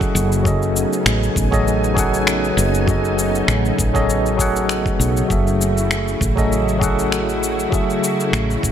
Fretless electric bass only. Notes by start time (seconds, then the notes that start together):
0.15 F#1
1.06 A1
1.36 A1
2.57 F#1
3.48 A1
3.78 A1
4.99 B1
5.30 F#1
6.21 A1
8.33 A1
8.63 A1